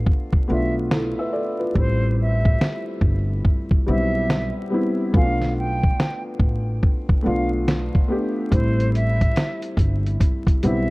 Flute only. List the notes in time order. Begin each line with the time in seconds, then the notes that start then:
0.52 E5
1.79 C5
2.22 E5
3.89 E5
5.16 F5
5.58 G5
7.27 F5
8.53 C5
8.95 E5
10.65 E5